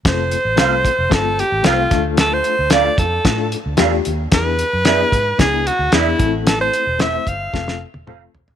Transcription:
<<
  \new Staff \with { instrumentName = "Clean electric guitar" } { \time 4/4 \key f \major \tempo 4 = 112 r4 <a' c'' f''>16 r4. r16 <a' c'' f''>16 r8. | r4 <a' d'' f''>16 r4. r16 <a' d'' f''>16 r8. | r4 <gis' d'' e''>16 r4. r16 <gis' d'' e''>16 r8. | r4 <a' c'' e''>16 r4. r16 <a' c'' f''>16 r8. | }
  \new Staff \with { instrumentName = "Alto saxophone" } { \time 4/4 \key f \major c''2 a'8 g'8 f'8. r16 | a'16 c''8. d''8 a'4 r4. | b'2 gis'8 ges'8 e'8. r16 | a'16 c''8. e''8 f''4 r4. | }
  \new Staff \with { instrumentName = "Reed electric piano" } { \time 4/4 \key f \major <a c' f' a'>8 r8 <a c' f' a'>8 r8 <a c' f' a'>8 r8 <a c' f' a'>8 <a d' f' a'>8~ | <a d' f' a'>8 r8 <a d' f' a'>8 r8 <a d' f' a'>8 r8 <a d' f' g'>8 r8 | <b d' e' gis'>8 r8 <b d' e' gis'>8 r8 <b d' e' gis'>8 r8 <b d' e' gis'>8 <a c' e' a'>8~ | <a c' e' a'>8 r8 <a c' e' c''>8 r8 <a c' f' a'>8 r8 <a c' f' a'>8 r8 | }
  \new Staff \with { instrumentName = "Fingered electric bass" } { \clef bass \time 4/4 \key f \major f,,8. a,,16 c,8. f,,16 g,,8. a,,16 c,8 d,8~ | d,8. d,8. f,8 a,8. d,16 e,8 ees,8 | e,8. ges,8. gis,8 des,8. d,16 e,8 a,,8~ | a,,8. e,,8. g,,8 f,,8. e,,16 f,,8 e,,8 | }
  \new DrumStaff \with { instrumentName = "Drums" } \drummode { \time 4/4 <hh bd sn>8 hh8 <hh sn>8 <hh bd>8 <hh bd sn>8 hh8 <hh sn>8 <hh bd sn>8 | <hh sn>8 hh8 <hh sn>8 <hh bd>8 <hh bd sn>8 hh8 <hh sn>8 hh8 | <hh bd sn>8 hh8 <hh sn>8 <hh bd>8 <hh bd sn>8 hh8 <hh sn>8 <hh bd>8 | <hh sn>8 hh8 <hh sn>8 <hh bd>8 <bd sn>16 sn8 tommh16 toml8 tomfh16 tomfh16 | }
>>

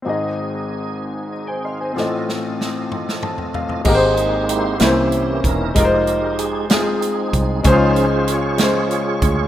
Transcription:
<<
  \new Staff \with { instrumentName = "Grand piano" } { \time 6/8 \key aes \major \tempo 4. = 63 << { r2 r16 <c'' aes''>16 <ees'' c'''>16 <c'' aes''>16~ | <c'' aes''>16 r4. r16 a''8 f''8 | r2. | r2. |
r2. | } \\ { <c' ees' aes' ees''>2. | <c' f' a' ees''>2. | <aes ees' g' bes' c''>4 r8 <bes des' e' c''>4 r8 | <aes ees' f' bes' c''>4 r8 <aes ees' f' aes'>4 r8 |
<aes des' ees' f' c''>4 r8 <aes des' f' c''>4 r8 | } >> }
  \new Staff \with { instrumentName = "Grand piano" } { \clef bass \time 6/8 \key aes \major <aes,, aes,>2. | <a,, a,>2. | aes,4. c4. | r2. |
des4. r4. | }
  \new Staff \with { instrumentName = "Tonewheel organ" } { \time 6/8 \key aes \major << { r2 ees''16 g''16 f''16 ees''16~ | ees''16 r2 r8. | aes'4 c''4 r8 bes'8~ | bes'4 aes'8 aes'4 r8 |
c''4 des''2 | } \\ { <c' ees' aes' ees''>2. | <a, c' f' a' ees''>2. | ees'4 <fes' g'>4. ees'8~ | ees'4 r8 <c' ees'>4. |
<f' aes'>4 <f' aes'>2 | } >> }
  \new Staff \with { instrumentName = "Tonewheel organ" } { \time 6/8 \key aes \major r2. | r2. | <aes bes c'>4. <e bes des'>4. | <aes ees' g'>4. r4. |
<f des' ees'>8 r2 r8 | }
  \new Staff \with { instrumentName = "Fingered electric bass" } { \clef bass \time 6/8 \key aes \major r2. | r2. | aes,,4. c,4 e,,8 | f,,2~ f,,8 c,8 |
des,2~ des,8 d,8 | }
  \new DrumStaff \with { instrumentName = "Drums" } \drummode { \time 6/8 r4. r4. | sn8 sn8 sn8 toml16 sn16 toml16 tomfh16 tomfh16 tomfh16 | <cymc bd>8 hh8 hh8 <hh sn>8 hh8 <hh bd>8 | <hh bd>8 hh8 hh8 <hh sn>8 hh8 <hh bd>8 |
<hh bd>8 hh8 hh8 <hh sn>8 hh8 <hh bd>8 | }
>>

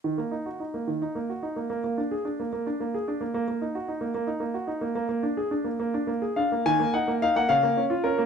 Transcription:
<<
  \new Staff \with { instrumentName = "Grand piano" } { \time 6/8 \key ees \minor \tempo 4. = 72 r2. | r2. | r2. | r2 r8 f''8 |
aes''8 ges''8 f''16 ges''16 f''4 bes'8 | }
  \new Staff \with { instrumentName = "Grand piano" } { \time 6/8 \key ees \minor ees16 bes16 ees'16 ges'16 ees'16 bes16 ees16 ees'16 bes16 ges'16 ees'16 bes16 | bes16 bes16 d'16 aes'16 d'16 bes16 bes16 d'16 bes16 aes'16 d'16 bes16 | bes16 bes16 ees'16 ges'16 ees'16 bes16 bes16 ees'16 bes16 ges'16 ees'16 bes16 | bes16 bes16 d'16 aes'16 d'16 bes16 bes16 d'16 bes16 aes'16 d'16 bes16 |
ees16 bes16 ees'16 bes16 ees'16 bes16 des16 bes16 des'16 f'16 des'16 bes16 | }
>>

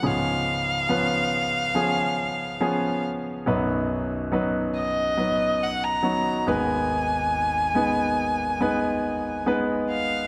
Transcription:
<<
  \new Staff \with { instrumentName = "Violin" } { \time 4/4 \key gis \dorian \tempo 4 = 70 eis''2.~ eis''8 r8 | r4. dis''4 fis''16 ais''8. gis''8~ | gis''2. r8 eis''8 | }
  \new Staff \with { instrumentName = "Grand piano" } { \time 4/4 \key gis \dorian <eis b cis' gis'>4 <eis b cis' b'>4 <eis b cis' gis'>4 <eis b cis' gis'>4 | <fis b dis' b'>4 <fis b dis' b'>4 <fis b dis' b'>4 <fis b dis' fis'>8 <gis b dis' b'>8~ | <gis b dis' b'>4 <gis b dis' b'>4 <gis b dis' b'>4 <gis b dis' b'>4 | }
  \new Staff \with { instrumentName = "Grand piano" } { \clef bass \time 4/4 \key gis \dorian <cis, gis,>1 | <b,, fis,>2.~ <b,, fis,>8 <gis,, dis,>8~ | <gis,, dis,>2.~ <gis,, dis,>8 r8 | }
>>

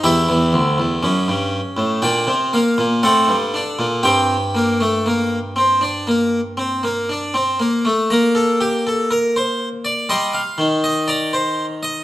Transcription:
<<
  \new Staff \with { instrumentName = "Harpsichord" } { \time 4/4 \key g \minor \tempo 4 = 60 << { e''2 g''8 f''8 fis''4 | g''2.~ g''8 r8 | bes''2 c'''4 bes''4 | } \\ { g'2. a'4 | g'2.~ g'8 r8 | r16 a'16 g'16 a'16 bes'16 c''8 d''16 ees''16 f''8 ees''16 d''16 c''8 ees''16 | } >> }
  \new Staff \with { instrumentName = "Harpsichord" } { \time 4/4 \key g \minor << { e'4 cis'4 d'8 bes8 c'8 d'8 | c'8 bes16 a16 bes8 c'16 d'16 bes8 c'16 bes16 d'16 c'16 bes16 a16 | bes2 g8 ees4. | } \\ { e,16 e,16 d,16 e,16 fis,16 g,8 a,16 bes,16 c8 bes,16 a,16 g,8 bes,16 | g,2.~ g,8 r8 | r1 | } >> }
>>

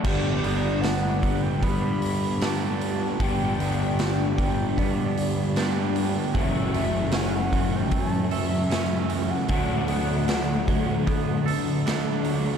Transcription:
<<
  \new Staff \with { instrumentName = "Soft synth lead" } { \time 4/4 \key g \lydian \tempo 4 = 76 d''4 fis''8. g''16 b''4 a''4 | g''4. g''8 d''4 r4 | e''4 fis''8. g''16 a''8 e''4~ e''16 fis''16 | fis''2. r4 | }
  \new Staff \with { instrumentName = "Clean electric guitar" } { \time 4/4 \key g \lydian r8 b8 d'4 b4 d'4~ | d'8 b8 d'4 b4 d'4 | e8 a8 cis'8 e8 a8 a'8 cis'8 e8 | fis8 b8 d'8 fis8 b8 a'8 d'8 fis8 | }
  \new Staff \with { instrumentName = "Overdriven electric guitar" } { \time 4/4 \key g \lydian <g, d g b d' g'>1 | <g, d g b d' g'>1 | <fis, cis fis a cis' fis'>1 | <d fis a d' fis'>1 | }
  \new Staff \with { instrumentName = "Overdriven electric guitar" } { \time 4/4 \key g \lydian <g, d g b d' g'>4. <g, d g b d' g'>4. <g, d g b d' g'>4 | <g, d g b d' g'>4. <g, d g b d' g'>4. <g, d g b d' g'>4 | <fis, cis fis a cis' fis'>4. <fis, cis fis a cis' fis'>4. <fis, cis fis a cis' fis'>4 | <d a d' fis'>4. <d a d' fis'>4. <d a d' fis'>4 | }
  \new Staff \with { instrumentName = "Picked electric bass" } { \clef bass \time 4/4 \key g \lydian g,,8 g,,4. g,2 | g,,8 g,,4. g,2 | fis,,8 fis,,4. fis,2 | d,8 d,4. d2 | }
  \new DrumStaff \with { instrumentName = "Drums" } \drummode { \time 4/4 <cymc bd>8 hho8 <hho sn>8 <hho bd>8 <hho bd>8 hho8 <hho sn>8 hho8 | <hho bd>8 hho8 <hho sn>8 <hho bd>8 <hho bd>8 hho8 <hho sn>8 hho8 | <hho bd>8 hho8 <hho sn>8 <hho bd>8 <hho bd>8 hho8 <hho sn>8 hho8 | <hho bd>8 hho8 <hho sn>8 <hho bd>8 <hho bd>8 hho8 <hho sn>8 hho8 | }
>>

